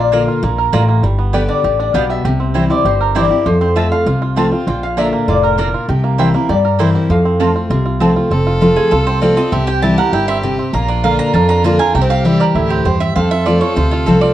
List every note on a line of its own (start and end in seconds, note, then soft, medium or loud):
0.00 0.27 A#1 medium
0.00 0.40 A#2 medium
0.00 0.12 A#3 medium
0.00 0.27 F4 medium
0.00 0.13 D5 medium
0.12 0.41 D3 medium
0.12 0.21 A#3 medium
0.12 0.41 A#3 medium
0.12 0.42 A#3 medium
0.12 0.42 D4 soft
0.12 0.21 F4 medium
0.12 0.42 F4 medium
0.12 0.69 A#4 medium
0.12 0.22 D5 medium
0.12 0.22 A#5 medium
0.28 0.70 F4 medium
0.43 0.68 A#1 medium
0.43 0.72 A#2 medium
0.43 0.86 A#3 medium
0.58 1.01 A#4 medium
0.73 0.99 A1 medium
0.73 1.02 A2 loud
0.73 0.82 A#3 medium
0.73 0.82 F4 medium
0.73 1.04 F4 medium
0.73 0.82 D5 loud
0.73 0.83 A#5 loud
0.89 1.04 A#3 medium
1.03 1.48 G1 loud
1.03 1.61 G2 medium
1.03 2.43 G3 medium
1.19 1.61 B3 medium
1.33 1.62 D3 soft
1.33 1.63 G3 medium
1.33 1.43 B3 medium
1.33 1.63 B3 medium
1.33 1.43 G4 medium
1.33 1.63 G4 soft
1.33 1.63 G4 medium
1.33 1.50 B4 medium
1.33 1.43 D5 medium
1.33 1.43 G5 loud
1.48 1.78 D4 medium
1.48 1.79 D5 medium
1.64 1.90 A1 medium
1.64 1.93 A2 medium
1.64 2.07 G4 medium
1.79 2.22 D4 medium
1.79 1.95 D5 medium
1.94 2.20 B1 medium
1.94 2.23 B2 medium
1.94 2.03 B3 medium
1.94 2.25 B3 medium
1.94 2.03 G4 medium
1.94 2.04 D5 loud
1.94 2.09 F5 medium
1.94 2.04 G5 medium
2.09 2.24 G4 medium
2.09 2.70 E5 loud
2.25 2.69 C2 medium
2.25 2.82 C3 medium
2.25 2.67 G4 medium
2.40 2.69 C4 medium
2.54 2.69 E3 medium
2.54 2.70 G3 soft
2.54 2.64 C4 medium
2.54 2.70 C4 medium
2.54 2.64 E4 medium
2.54 2.97 E4 soft
2.54 2.68 E4 medium
2.54 2.64 C5 medium
2.54 2.64 G5 medium
2.70 3.13 C4 medium
2.70 2.85 C4 medium
2.70 2.84 E4 medium
2.70 2.86 D5 medium
2.85 3.30 G1 medium
2.85 3.43 G2 medium
2.85 3.28 G4 medium
2.85 3.14 C5 medium
3.01 3.43 A#4 medium
3.15 3.30 E3 medium
3.15 3.30 G3 medium
3.15 3.24 C4 medium
3.15 3.31 C4 medium
3.15 3.25 E4 medium
3.15 3.46 E4 medium
3.15 3.29 E4 medium
3.15 3.25 C5 loud
3.15 3.47 D5 loud
3.15 3.25 G5 loud
3.30 3.46 C4 soft
3.30 3.45 E4 medium
3.30 3.46 G4 medium
3.46 3.91 F2 medium
3.46 4.04 F2 medium
3.46 4.86 F3 medium
3.46 3.60 C5 medium
3.61 4.04 C4 medium
3.61 3.77 C5 medium
3.76 4.05 F3 medium
3.76 4.05 A3 medium
3.76 3.85 C4 loud
3.76 4.05 C4 medium
3.76 3.85 F4 medium
3.76 3.90 F4 soft
3.76 4.06 F4 medium
3.76 3.85 C5 medium
3.76 3.90 E5 loud
3.76 3.86 A5 medium
3.92 4.06 F4 medium
3.92 4.67 F5 loud
4.06 4.51 C2 medium
4.06 4.64 C3 medium
4.06 4.21 F4 medium
4.22 4.51 F4 medium
4.36 4.51 F3 medium
4.36 4.52 A3 medium
4.36 4.46 C4 medium
4.36 4.68 C4 medium
4.36 4.52 C4 medium
4.36 4.46 F4 medium
4.36 4.51 F4 medium
4.36 4.46 C5 medium
4.36 4.46 A5 loud
4.52 4.67 C4 soft
4.52 4.66 F4 medium
4.52 4.67 F4 medium
4.67 5.12 A#1 loud
4.67 5.25 A#2 medium
4.67 5.10 F4 medium
4.67 4.83 G5 loud
4.83 4.98 F5 loud
4.97 5.26 D3 medium
4.97 5.06 A#3 medium
4.97 5.27 A#3 medium
4.97 5.40 D4 medium
4.97 5.27 D4 medium
4.97 5.06 F4 medium
4.97 5.27 F4 soft
4.97 5.07 D5 medium
4.97 5.29 E5 loud
4.97 5.07 A#5 loud
5.13 5.55 A#3 medium
5.28 5.73 F1 medium
5.28 5.57 A2 medium
5.28 5.71 F4 medium
5.28 5.43 D5 medium
5.43 5.86 A#4 medium
5.43 5.58 A#4 medium
5.58 5.87 A#2 medium
5.58 5.67 A#3 medium
5.58 5.89 D4 medium
5.58 5.67 F4 medium
5.58 5.87 A#4 medium
5.58 5.67 D5 medium
5.58 5.68 A#5 medium
5.74 5.89 F4 medium
5.88 6.33 C2 loud
5.88 6.46 C3 medium
5.88 6.31 G4 medium
5.88 6.17 G5 loud
6.04 6.33 A#3 medium
6.18 6.33 E3 medium
6.18 6.28 A#3 medium
6.18 6.34 A#3 medium
6.18 6.34 C4 medium
6.18 6.28 E4 medium
6.18 6.62 E4 medium
6.18 6.33 E4 medium
6.18 6.28 C5 medium
6.18 6.50 E5 loud
6.18 6.28 G5 loud
6.34 6.77 A#3 medium
6.34 6.49 C4 soft
6.34 6.49 E4 medium
6.49 6.94 G2 medium
6.49 7.07 G2 medium
6.49 6.92 G4 medium
6.49 6.96 D5 medium
6.65 7.07 A#4 medium
6.79 7.08 E3 medium
6.79 6.88 A#3 medium
6.79 7.09 A#3 medium
6.79 7.09 C4 medium
6.79 6.88 E4 loud
6.79 7.10 E4 medium
6.79 7.09 E4 medium
6.79 6.89 C5 loud
6.79 6.89 G5 loud
6.95 7.10 G4 medium
6.95 7.11 C5 medium
7.09 7.54 F2 medium
7.09 7.67 F2 medium
7.09 7.52 F3 medium
7.09 7.97 F5 medium
7.25 7.68 C4 medium
7.40 7.69 F3 medium
7.40 7.69 A3 medium
7.40 7.49 C4 medium
7.40 7.69 C4 medium
7.40 7.49 F4 medium
7.40 7.55 F4 medium
7.40 7.70 F4 medium
7.40 7.49 C5 medium
7.40 7.50 A5 loud
7.56 7.70 F4 medium
7.70 8.15 C2 medium
7.70 8.28 C3 medium
7.70 7.84 F4 medium
7.86 8.15 F4 medium
8.00 8.29 F3 medium
8.00 8.30 A3 medium
8.00 8.10 C4 medium
8.00 8.30 C4 medium
8.00 8.10 F4 medium
8.00 8.30 F4 medium
8.00 8.10 C5 medium
8.00 8.10 A5 loud
8.16 8.31 F4 medium
8.30 8.75 F1 loud
8.30 8.89 F2 medium
8.30 9.06 C4 medium
8.30 9.54 A4 loud
8.47 8.61 F4 medium
8.61 8.90 F3 medium
8.61 8.90 A3 medium
8.61 8.91 C4 medium
8.61 8.76 F4 medium
8.61 8.91 F4 medium
8.76 8.91 F4 medium
8.76 8.91 G#4 medium
8.91 9.36 C2 medium
8.91 9.49 C3 loud
8.91 9.21 F4 medium
8.91 9.06 A4 medium
9.07 9.36 C4 medium
9.07 9.21 C5 medium
9.22 9.36 F3 medium
9.22 9.37 A3 medium
9.22 9.37 C4 loud
9.22 9.52 F4 medium
9.22 9.36 F4 loud
9.22 9.37 D5 medium
9.37 9.51 C4 medium
9.37 9.53 C4 medium
9.37 9.52 F4 medium
9.37 9.52 D#5 medium
9.52 9.97 C2 medium
9.52 10.10 C3 loud
9.52 9.95 C4 medium
9.52 10.75 G4 loud
9.52 9.67 E5 medium
9.67 10.10 G4 medium
9.67 9.82 G5 loud
9.82 9.97 E3 medium
9.82 9.97 G3 medium
9.82 9.98 C4 medium
9.82 10.12 E4 medium
9.82 9.96 E4 medium
9.82 9.97 A5 loud
9.97 10.13 C4 medium
9.97 10.12 E4 medium
9.97 10.41 A#4 medium
9.97 10.12 F#5 loud
10.12 10.57 G1 medium
10.12 10.42 G2 medium
10.12 10.56 E4 medium
10.12 10.27 G5 loud
10.28 10.58 C4 medium
10.28 10.37 E5 loud
10.43 10.72 C3 loud
10.43 10.74 G4 medium
10.59 10.74 C4 medium
10.73 11.18 A#1 medium
10.73 11.31 A#2 medium
10.73 11.16 A#3 medium
10.73 11.95 F4 medium
10.73 10.88 A#5 medium
10.88 11.19 D4 medium
10.88 11.03 D5 medium
11.04 11.33 D3 medium
11.04 11.33 A#3 medium
11.04 11.33 D4 medium
11.04 11.33 F4 medium
11.04 11.34 A#4 medium
11.04 11.19 F5 medium
11.19 11.49 D4 medium
11.19 11.33 A#5 loud
11.34 11.79 F2 loud
11.34 11.92 F2 medium
11.34 11.77 A#4 medium
11.34 11.49 A5 medium
11.49 11.92 D4 medium
11.49 11.64 A#5 loud
11.64 11.79 D3 loud
11.64 11.79 A#3 loud
11.64 11.80 D4 loud
11.64 11.95 F4 medium
11.64 11.78 F4 loud
11.64 11.79 A5 medium
11.79 11.95 D4 medium
11.79 11.94 F4 medium
11.79 11.95 A#4 medium
11.79 11.94 G#5 loud
11.94 12.39 C2 medium
11.94 12.53 C3 medium
11.94 12.01 A#3 medium
11.94 13.01 G4 loud
11.94 12.10 G5 medium
12.01 12.25 C4 medium
12.10 12.53 G4 medium
12.10 12.25 F5 loud
12.24 12.54 E3 medium
12.24 12.54 G3 medium
12.24 12.54 C4 medium
12.24 12.55 E4 medium
12.24 12.40 E5 medium
12.40 12.83 A#4 medium
12.40 12.55 D5 medium
12.55 12.81 D2 medium
12.55 12.85 A2 medium
12.55 12.98 E4 medium
12.55 12.70 E5 medium
12.70 13.00 C4 medium
12.70 12.85 G4 medium
12.85 13.11 E2 medium
12.85 13.15 G2 medium
12.85 13.16 G4 medium
12.85 13.00 C5 medium
13.00 13.15 C4 medium
13.00 13.15 E5 loud
13.16 13.74 F2 medium
13.16 13.61 F2 medium
13.16 13.59 C4 medium
13.16 14.34 A4 loud
13.16 13.31 F5 loud
13.31 13.45 F4 medium
13.31 13.46 E5 loud
13.46 13.61 F3 medium
13.46 13.61 A3 medium
13.46 13.62 C4 medium
13.46 13.61 F4 medium
13.46 13.60 F4 medium
13.46 13.61 D5 medium
13.61 13.77 C4 soft
13.61 13.76 F4 medium
13.61 13.76 C#5 medium
13.76 14.03 D2 medium
13.76 14.34 C3 loud
13.76 13.92 F4 medium
13.76 13.91 C5 medium
13.91 14.06 F4 medium
13.91 14.07 F4 medium
14.06 14.33 C2 medium
14.06 14.34 F3 medium
14.06 14.34 A3 medium
14.06 14.34 C4 medium
14.06 14.21 F4 medium
14.06 14.34 F4 medium
14.06 14.21 A4 medium
14.21 14.34 F4 medium
14.21 14.34 D5 medium